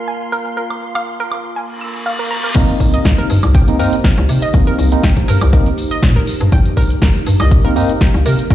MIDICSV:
0, 0, Header, 1, 10, 480
1, 0, Start_track
1, 0, Key_signature, -3, "minor"
1, 0, Tempo, 495868
1, 554, Time_signature, 4, 2, 24, 8
1, 8275, End_track
2, 0, Start_track
2, 0, Title_t, "String machine"
2, 0, Program_c, 0, 50
2, 0, Note_on_c, 0, 84, 80
2, 2483, Note_off_c, 0, 84, 0
2, 8275, End_track
3, 0, Start_track
3, 0, Title_t, "Analog synth pad"
3, 0, Program_c, 1, 89
3, 0, Note_on_c, 1, 65, 71
3, 0, Note_on_c, 1, 70, 68
3, 0, Note_on_c, 1, 77, 70
3, 0, Note_on_c, 1, 80, 84
3, 2473, Note_off_c, 1, 65, 0
3, 2473, Note_off_c, 1, 70, 0
3, 2473, Note_off_c, 1, 77, 0
3, 2473, Note_off_c, 1, 80, 0
3, 8275, End_track
4, 0, Start_track
4, 0, Title_t, "Synth arpeggio sound"
4, 0, Program_c, 2, 84
4, 74, Note_on_c, 2, 80, 72
4, 158, Note_off_c, 2, 80, 0
4, 313, Note_on_c, 2, 70, 98
4, 436, Note_off_c, 2, 70, 0
4, 553, Note_on_c, 2, 70, 76
4, 638, Note_off_c, 2, 70, 0
4, 922, Note_on_c, 2, 77, 101
4, 995, Note_off_c, 2, 77, 0
4, 1162, Note_on_c, 2, 70, 99
4, 1235, Note_off_c, 2, 70, 0
4, 1513, Note_on_c, 2, 80, 75
4, 1598, Note_off_c, 2, 80, 0
4, 1754, Note_on_c, 2, 88, 75
4, 1838, Note_off_c, 2, 88, 0
4, 1993, Note_on_c, 2, 77, 75
4, 2116, Note_off_c, 2, 77, 0
4, 2122, Note_on_c, 2, 70, 93
4, 2195, Note_off_c, 2, 70, 0
4, 2233, Note_on_c, 2, 82, 93
4, 2318, Note_off_c, 2, 82, 0
4, 2362, Note_on_c, 2, 70, 70
4, 2406, Note_off_c, 2, 70, 0
4, 2474, Note_on_c, 2, 70, 80
4, 2558, Note_off_c, 2, 70, 0
4, 2843, Note_on_c, 2, 75, 101
4, 2915, Note_off_c, 2, 75, 0
4, 3082, Note_on_c, 2, 70, 102
4, 3155, Note_off_c, 2, 70, 0
4, 3434, Note_on_c, 2, 79, 79
4, 3518, Note_off_c, 2, 79, 0
4, 3673, Note_on_c, 2, 70, 99
4, 3796, Note_off_c, 2, 70, 0
4, 3913, Note_on_c, 2, 70, 79
4, 3998, Note_off_c, 2, 70, 0
4, 4281, Note_on_c, 2, 75, 102
4, 4355, Note_off_c, 2, 75, 0
4, 4522, Note_on_c, 2, 70, 100
4, 4595, Note_off_c, 2, 70, 0
4, 4874, Note_on_c, 2, 79, 77
4, 4958, Note_off_c, 2, 79, 0
4, 5113, Note_on_c, 2, 70, 106
4, 5236, Note_off_c, 2, 70, 0
4, 5353, Note_on_c, 2, 70, 82
4, 5438, Note_off_c, 2, 70, 0
4, 5722, Note_on_c, 2, 75, 108
4, 5795, Note_off_c, 2, 75, 0
4, 5962, Note_on_c, 2, 70, 103
4, 6035, Note_off_c, 2, 70, 0
4, 6313, Note_on_c, 2, 79, 84
4, 6398, Note_off_c, 2, 79, 0
4, 6553, Note_on_c, 2, 70, 108
4, 6676, Note_off_c, 2, 70, 0
4, 6793, Note_on_c, 2, 70, 81
4, 6878, Note_off_c, 2, 70, 0
4, 7162, Note_on_c, 2, 75, 103
4, 7235, Note_off_c, 2, 75, 0
4, 7402, Note_on_c, 2, 70, 105
4, 7475, Note_off_c, 2, 70, 0
4, 7754, Note_on_c, 2, 79, 75
4, 7838, Note_off_c, 2, 79, 0
4, 7994, Note_on_c, 2, 70, 98
4, 8116, Note_off_c, 2, 70, 0
4, 8234, Note_on_c, 2, 70, 81
4, 8275, Note_off_c, 2, 70, 0
4, 8275, End_track
5, 0, Start_track
5, 0, Title_t, "Ambient pad"
5, 0, Program_c, 3, 92
5, 0, Note_on_c, 3, 58, 75
5, 0, Note_on_c, 3, 65, 72
5, 0, Note_on_c, 3, 70, 71
5, 0, Note_on_c, 3, 82, 84
5, 2433, Note_off_c, 3, 58, 0
5, 2433, Note_off_c, 3, 65, 0
5, 2434, Note_off_c, 3, 70, 0
5, 2434, Note_off_c, 3, 82, 0
5, 2472, Note_on_c, 3, 58, 82
5, 2472, Note_on_c, 3, 63, 76
5, 2472, Note_on_c, 3, 67, 76
5, 2473, Note_on_c, 3, 72, 92
5, 6275, Note_off_c, 3, 72, 0
5, 6313, Note_on_c, 3, 70, 88
5, 8275, Note_off_c, 3, 58, 0
5, 8275, Note_off_c, 3, 63, 0
5, 8275, Note_off_c, 3, 67, 0
5, 8275, Note_off_c, 3, 70, 0
5, 8275, End_track
6, 0, Start_track
6, 0, Title_t, "Tine electric piano"
6, 0, Program_c, 4, 4
6, 2465, Note_on_c, 4, 58, 99
6, 2473, Note_on_c, 4, 60, 88
6, 2481, Note_on_c, 4, 63, 108
6, 3189, Note_off_c, 4, 58, 0
6, 3193, Note_off_c, 4, 60, 0
6, 3197, Note_off_c, 4, 63, 0
6, 3558, Note_on_c, 4, 58, 87
6, 3562, Note_on_c, 4, 60, 82
6, 3566, Note_on_c, 4, 63, 102
6, 3645, Note_off_c, 4, 58, 0
6, 3647, Note_off_c, 4, 60, 0
6, 3649, Note_off_c, 4, 63, 0
6, 3669, Note_on_c, 4, 58, 91
6, 3672, Note_on_c, 4, 60, 88
6, 3677, Note_on_c, 4, 63, 105
6, 3814, Note_off_c, 4, 58, 0
6, 3816, Note_off_c, 4, 60, 0
6, 3819, Note_off_c, 4, 63, 0
6, 4389, Note_on_c, 4, 58, 86
6, 4393, Note_on_c, 4, 60, 75
6, 4398, Note_on_c, 4, 63, 89
6, 4729, Note_off_c, 4, 58, 0
6, 4731, Note_off_c, 4, 60, 0
6, 4733, Note_off_c, 4, 63, 0
6, 4758, Note_on_c, 4, 58, 83
6, 4762, Note_on_c, 4, 60, 76
6, 4766, Note_on_c, 4, 63, 90
6, 4888, Note_off_c, 4, 58, 0
6, 4890, Note_off_c, 4, 60, 0
6, 4893, Note_off_c, 4, 63, 0
6, 5349, Note_on_c, 4, 58, 92
6, 5353, Note_on_c, 4, 60, 89
6, 5357, Note_on_c, 4, 63, 105
6, 5495, Note_off_c, 4, 58, 0
6, 5497, Note_off_c, 4, 60, 0
6, 5499, Note_off_c, 4, 63, 0
6, 7398, Note_on_c, 4, 58, 97
6, 7402, Note_on_c, 4, 60, 85
6, 7406, Note_on_c, 4, 63, 99
6, 7485, Note_off_c, 4, 58, 0
6, 7487, Note_off_c, 4, 60, 0
6, 7489, Note_off_c, 4, 63, 0
6, 7509, Note_on_c, 4, 58, 93
6, 7513, Note_on_c, 4, 60, 87
6, 7517, Note_on_c, 4, 63, 108
6, 7655, Note_off_c, 4, 58, 0
6, 7657, Note_off_c, 4, 60, 0
6, 7659, Note_off_c, 4, 63, 0
6, 8229, Note_on_c, 4, 58, 83
6, 8233, Note_on_c, 4, 60, 77
6, 8237, Note_on_c, 4, 63, 86
6, 8275, Note_off_c, 4, 58, 0
6, 8275, Note_off_c, 4, 60, 0
6, 8275, Note_off_c, 4, 63, 0
6, 8275, End_track
7, 0, Start_track
7, 0, Title_t, "FM bass"
7, 0, Program_c, 5, 39
7, 2473, Note_on_c, 5, 36, 101
7, 2563, Note_off_c, 5, 36, 0
7, 2713, Note_on_c, 5, 36, 77
7, 2886, Note_off_c, 5, 36, 0
7, 2953, Note_on_c, 5, 36, 97
7, 3043, Note_off_c, 5, 36, 0
7, 3193, Note_on_c, 5, 43, 89
7, 3283, Note_off_c, 5, 43, 0
7, 3321, Note_on_c, 5, 36, 98
7, 3673, Note_on_c, 5, 43, 96
7, 3688, Note_off_c, 5, 36, 0
7, 3763, Note_off_c, 5, 43, 0
7, 4043, Note_on_c, 5, 36, 110
7, 4120, Note_off_c, 5, 36, 0
7, 4154, Note_on_c, 5, 48, 86
7, 4243, Note_off_c, 5, 48, 0
7, 4393, Note_on_c, 5, 36, 99
7, 4483, Note_off_c, 5, 36, 0
7, 4633, Note_on_c, 5, 36, 81
7, 4806, Note_off_c, 5, 36, 0
7, 4873, Note_on_c, 5, 36, 98
7, 4963, Note_off_c, 5, 36, 0
7, 5112, Note_on_c, 5, 43, 89
7, 5202, Note_off_c, 5, 43, 0
7, 5241, Note_on_c, 5, 36, 103
7, 5539, Note_off_c, 5, 36, 0
7, 5834, Note_on_c, 5, 46, 103
7, 5962, Note_on_c, 5, 34, 101
7, 5977, Note_off_c, 5, 46, 0
7, 6040, Note_off_c, 5, 34, 0
7, 6201, Note_on_c, 5, 43, 87
7, 6279, Note_off_c, 5, 43, 0
7, 6313, Note_on_c, 5, 36, 97
7, 6403, Note_off_c, 5, 36, 0
7, 6553, Note_on_c, 5, 36, 78
7, 6726, Note_off_c, 5, 36, 0
7, 6794, Note_on_c, 5, 36, 98
7, 6883, Note_off_c, 5, 36, 0
7, 7034, Note_on_c, 5, 43, 87
7, 7123, Note_off_c, 5, 43, 0
7, 7162, Note_on_c, 5, 36, 106
7, 7513, Note_on_c, 5, 43, 98
7, 7528, Note_off_c, 5, 36, 0
7, 7603, Note_off_c, 5, 43, 0
7, 7882, Note_on_c, 5, 36, 105
7, 7959, Note_off_c, 5, 36, 0
7, 7993, Note_on_c, 5, 48, 88
7, 8083, Note_off_c, 5, 48, 0
7, 8233, Note_on_c, 5, 36, 105
7, 8275, Note_off_c, 5, 36, 0
7, 8275, End_track
8, 0, Start_track
8, 0, Title_t, "Impact"
8, 0, Program_c, 6, 103
8, 2473, Note_on_c, 6, 60, 73
8, 4393, Note_off_c, 6, 60, 0
8, 8275, End_track
9, 0, Start_track
9, 0, Title_t, "Reverse cymbal"
9, 0, Program_c, 7, 119
9, 1513, Note_on_c, 7, 60, 71
9, 2473, Note_off_c, 7, 60, 0
9, 8275, End_track
10, 0, Start_track
10, 0, Title_t, "Drums"
10, 682, Note_on_c, 9, 76, 54
10, 779, Note_off_c, 9, 76, 0
10, 922, Note_on_c, 9, 76, 69
10, 1019, Note_off_c, 9, 76, 0
10, 1273, Note_on_c, 9, 76, 80
10, 1370, Note_off_c, 9, 76, 0
10, 2473, Note_on_c, 9, 36, 119
10, 2473, Note_on_c, 9, 42, 72
10, 2473, Note_on_c, 9, 49, 111
10, 2476, Note_on_c, 9, 82, 46
10, 2570, Note_off_c, 9, 36, 0
10, 2570, Note_off_c, 9, 42, 0
10, 2570, Note_off_c, 9, 49, 0
10, 2573, Note_off_c, 9, 82, 0
10, 2602, Note_on_c, 9, 42, 38
10, 2605, Note_on_c, 9, 82, 23
10, 2699, Note_off_c, 9, 42, 0
10, 2702, Note_off_c, 9, 82, 0
10, 2713, Note_on_c, 9, 36, 61
10, 2713, Note_on_c, 9, 46, 100
10, 2715, Note_on_c, 9, 82, 81
10, 2810, Note_off_c, 9, 36, 0
10, 2810, Note_off_c, 9, 46, 0
10, 2812, Note_off_c, 9, 82, 0
10, 2842, Note_on_c, 9, 42, 58
10, 2844, Note_on_c, 9, 82, 35
10, 2939, Note_off_c, 9, 42, 0
10, 2941, Note_off_c, 9, 82, 0
10, 2953, Note_on_c, 9, 36, 120
10, 2953, Note_on_c, 9, 42, 74
10, 2956, Note_on_c, 9, 82, 48
10, 2957, Note_on_c, 9, 38, 127
10, 3050, Note_off_c, 9, 36, 0
10, 3050, Note_off_c, 9, 42, 0
10, 3052, Note_off_c, 9, 82, 0
10, 3054, Note_off_c, 9, 38, 0
10, 3082, Note_on_c, 9, 42, 40
10, 3084, Note_on_c, 9, 82, 25
10, 3179, Note_off_c, 9, 42, 0
10, 3181, Note_off_c, 9, 82, 0
10, 3193, Note_on_c, 9, 46, 93
10, 3195, Note_on_c, 9, 82, 80
10, 3290, Note_off_c, 9, 46, 0
10, 3292, Note_off_c, 9, 82, 0
10, 3321, Note_on_c, 9, 42, 59
10, 3321, Note_on_c, 9, 76, 80
10, 3324, Note_on_c, 9, 82, 37
10, 3418, Note_off_c, 9, 42, 0
10, 3418, Note_off_c, 9, 76, 0
10, 3421, Note_off_c, 9, 82, 0
10, 3433, Note_on_c, 9, 36, 115
10, 3433, Note_on_c, 9, 42, 70
10, 3435, Note_on_c, 9, 82, 45
10, 3529, Note_off_c, 9, 42, 0
10, 3530, Note_off_c, 9, 36, 0
10, 3532, Note_off_c, 9, 82, 0
10, 3562, Note_on_c, 9, 42, 40
10, 3564, Note_on_c, 9, 82, 22
10, 3658, Note_off_c, 9, 42, 0
10, 3661, Note_off_c, 9, 82, 0
10, 3673, Note_on_c, 9, 46, 111
10, 3675, Note_on_c, 9, 82, 81
10, 3770, Note_off_c, 9, 46, 0
10, 3772, Note_off_c, 9, 82, 0
10, 3802, Note_on_c, 9, 42, 58
10, 3804, Note_on_c, 9, 82, 33
10, 3899, Note_off_c, 9, 42, 0
10, 3901, Note_off_c, 9, 82, 0
10, 3912, Note_on_c, 9, 42, 73
10, 3913, Note_on_c, 9, 36, 127
10, 3915, Note_on_c, 9, 82, 45
10, 3916, Note_on_c, 9, 38, 127
10, 4009, Note_off_c, 9, 42, 0
10, 4010, Note_off_c, 9, 36, 0
10, 4012, Note_off_c, 9, 82, 0
10, 4013, Note_off_c, 9, 38, 0
10, 4041, Note_on_c, 9, 42, 43
10, 4044, Note_on_c, 9, 82, 25
10, 4138, Note_off_c, 9, 42, 0
10, 4141, Note_off_c, 9, 82, 0
10, 4152, Note_on_c, 9, 46, 94
10, 4155, Note_on_c, 9, 82, 77
10, 4249, Note_off_c, 9, 46, 0
10, 4252, Note_off_c, 9, 82, 0
10, 4281, Note_on_c, 9, 42, 54
10, 4284, Note_on_c, 9, 82, 33
10, 4378, Note_off_c, 9, 42, 0
10, 4380, Note_off_c, 9, 82, 0
10, 4392, Note_on_c, 9, 42, 72
10, 4393, Note_on_c, 9, 36, 120
10, 4395, Note_on_c, 9, 82, 44
10, 4489, Note_off_c, 9, 42, 0
10, 4490, Note_off_c, 9, 36, 0
10, 4492, Note_off_c, 9, 82, 0
10, 4521, Note_on_c, 9, 42, 38
10, 4524, Note_on_c, 9, 82, 22
10, 4618, Note_off_c, 9, 42, 0
10, 4621, Note_off_c, 9, 82, 0
10, 4632, Note_on_c, 9, 46, 107
10, 4635, Note_on_c, 9, 82, 77
10, 4729, Note_off_c, 9, 46, 0
10, 4732, Note_off_c, 9, 82, 0
10, 4762, Note_on_c, 9, 42, 53
10, 4764, Note_on_c, 9, 82, 33
10, 4858, Note_off_c, 9, 42, 0
10, 4861, Note_off_c, 9, 82, 0
10, 4873, Note_on_c, 9, 36, 115
10, 4873, Note_on_c, 9, 42, 72
10, 4876, Note_on_c, 9, 82, 47
10, 4877, Note_on_c, 9, 38, 127
10, 4970, Note_off_c, 9, 36, 0
10, 4970, Note_off_c, 9, 42, 0
10, 4972, Note_off_c, 9, 82, 0
10, 4973, Note_off_c, 9, 38, 0
10, 5001, Note_on_c, 9, 42, 39
10, 5002, Note_on_c, 9, 36, 62
10, 5004, Note_on_c, 9, 82, 23
10, 5098, Note_off_c, 9, 42, 0
10, 5099, Note_off_c, 9, 36, 0
10, 5101, Note_off_c, 9, 82, 0
10, 5113, Note_on_c, 9, 46, 100
10, 5115, Note_on_c, 9, 82, 77
10, 5210, Note_off_c, 9, 46, 0
10, 5212, Note_off_c, 9, 82, 0
10, 5241, Note_on_c, 9, 42, 54
10, 5241, Note_on_c, 9, 76, 80
10, 5244, Note_on_c, 9, 82, 34
10, 5338, Note_off_c, 9, 42, 0
10, 5338, Note_off_c, 9, 76, 0
10, 5340, Note_off_c, 9, 82, 0
10, 5353, Note_on_c, 9, 36, 114
10, 5353, Note_on_c, 9, 42, 72
10, 5355, Note_on_c, 9, 82, 44
10, 5449, Note_off_c, 9, 42, 0
10, 5450, Note_off_c, 9, 36, 0
10, 5452, Note_off_c, 9, 82, 0
10, 5482, Note_on_c, 9, 42, 39
10, 5484, Note_on_c, 9, 82, 22
10, 5579, Note_off_c, 9, 42, 0
10, 5581, Note_off_c, 9, 82, 0
10, 5593, Note_on_c, 9, 46, 110
10, 5595, Note_on_c, 9, 82, 76
10, 5690, Note_off_c, 9, 46, 0
10, 5692, Note_off_c, 9, 82, 0
10, 5722, Note_on_c, 9, 42, 55
10, 5724, Note_on_c, 9, 82, 33
10, 5819, Note_off_c, 9, 42, 0
10, 5821, Note_off_c, 9, 82, 0
10, 5833, Note_on_c, 9, 42, 71
10, 5834, Note_on_c, 9, 36, 127
10, 5835, Note_on_c, 9, 82, 44
10, 5837, Note_on_c, 9, 38, 127
10, 5930, Note_off_c, 9, 36, 0
10, 5930, Note_off_c, 9, 42, 0
10, 5932, Note_off_c, 9, 82, 0
10, 5934, Note_off_c, 9, 38, 0
10, 5962, Note_on_c, 9, 42, 39
10, 5964, Note_on_c, 9, 82, 24
10, 6059, Note_off_c, 9, 42, 0
10, 6061, Note_off_c, 9, 82, 0
10, 6073, Note_on_c, 9, 46, 97
10, 6075, Note_on_c, 9, 82, 75
10, 6170, Note_off_c, 9, 46, 0
10, 6172, Note_off_c, 9, 82, 0
10, 6202, Note_on_c, 9, 42, 53
10, 6204, Note_on_c, 9, 82, 33
10, 6299, Note_off_c, 9, 42, 0
10, 6301, Note_off_c, 9, 82, 0
10, 6313, Note_on_c, 9, 42, 68
10, 6314, Note_on_c, 9, 36, 123
10, 6315, Note_on_c, 9, 82, 44
10, 6410, Note_off_c, 9, 36, 0
10, 6410, Note_off_c, 9, 42, 0
10, 6412, Note_off_c, 9, 82, 0
10, 6442, Note_on_c, 9, 42, 38
10, 6444, Note_on_c, 9, 82, 21
10, 6539, Note_off_c, 9, 42, 0
10, 6541, Note_off_c, 9, 82, 0
10, 6553, Note_on_c, 9, 46, 107
10, 6554, Note_on_c, 9, 36, 66
10, 6555, Note_on_c, 9, 82, 72
10, 6650, Note_off_c, 9, 36, 0
10, 6650, Note_off_c, 9, 46, 0
10, 6652, Note_off_c, 9, 82, 0
10, 6682, Note_on_c, 9, 42, 49
10, 6685, Note_on_c, 9, 82, 32
10, 6779, Note_off_c, 9, 42, 0
10, 6782, Note_off_c, 9, 82, 0
10, 6793, Note_on_c, 9, 36, 127
10, 6793, Note_on_c, 9, 42, 67
10, 6796, Note_on_c, 9, 82, 46
10, 6797, Note_on_c, 9, 38, 127
10, 6890, Note_off_c, 9, 36, 0
10, 6890, Note_off_c, 9, 42, 0
10, 6892, Note_off_c, 9, 82, 0
10, 6894, Note_off_c, 9, 38, 0
10, 6922, Note_on_c, 9, 42, 38
10, 6924, Note_on_c, 9, 82, 23
10, 7019, Note_off_c, 9, 42, 0
10, 7021, Note_off_c, 9, 82, 0
10, 7033, Note_on_c, 9, 46, 101
10, 7035, Note_on_c, 9, 82, 82
10, 7129, Note_off_c, 9, 46, 0
10, 7132, Note_off_c, 9, 82, 0
10, 7162, Note_on_c, 9, 42, 54
10, 7162, Note_on_c, 9, 76, 81
10, 7164, Note_on_c, 9, 82, 35
10, 7259, Note_off_c, 9, 42, 0
10, 7259, Note_off_c, 9, 76, 0
10, 7261, Note_off_c, 9, 82, 0
10, 7273, Note_on_c, 9, 36, 120
10, 7273, Note_on_c, 9, 42, 64
10, 7275, Note_on_c, 9, 82, 42
10, 7369, Note_off_c, 9, 42, 0
10, 7370, Note_off_c, 9, 36, 0
10, 7372, Note_off_c, 9, 82, 0
10, 7401, Note_on_c, 9, 42, 37
10, 7404, Note_on_c, 9, 82, 21
10, 7498, Note_off_c, 9, 42, 0
10, 7501, Note_off_c, 9, 82, 0
10, 7512, Note_on_c, 9, 46, 118
10, 7515, Note_on_c, 9, 82, 75
10, 7609, Note_off_c, 9, 46, 0
10, 7612, Note_off_c, 9, 82, 0
10, 7641, Note_on_c, 9, 42, 51
10, 7644, Note_on_c, 9, 82, 31
10, 7738, Note_off_c, 9, 42, 0
10, 7740, Note_off_c, 9, 82, 0
10, 7753, Note_on_c, 9, 36, 127
10, 7753, Note_on_c, 9, 42, 67
10, 7755, Note_on_c, 9, 82, 45
10, 7756, Note_on_c, 9, 38, 125
10, 7850, Note_off_c, 9, 36, 0
10, 7850, Note_off_c, 9, 42, 0
10, 7852, Note_off_c, 9, 82, 0
10, 7853, Note_off_c, 9, 38, 0
10, 7882, Note_on_c, 9, 42, 40
10, 7884, Note_on_c, 9, 82, 23
10, 7979, Note_off_c, 9, 42, 0
10, 7981, Note_off_c, 9, 82, 0
10, 7992, Note_on_c, 9, 46, 99
10, 7995, Note_on_c, 9, 82, 72
10, 8089, Note_off_c, 9, 46, 0
10, 8092, Note_off_c, 9, 82, 0
10, 8121, Note_on_c, 9, 42, 52
10, 8124, Note_on_c, 9, 82, 33
10, 8218, Note_off_c, 9, 42, 0
10, 8221, Note_off_c, 9, 82, 0
10, 8232, Note_on_c, 9, 42, 68
10, 8233, Note_on_c, 9, 36, 118
10, 8235, Note_on_c, 9, 82, 44
10, 8275, Note_off_c, 9, 36, 0
10, 8275, Note_off_c, 9, 42, 0
10, 8275, Note_off_c, 9, 82, 0
10, 8275, End_track
0, 0, End_of_file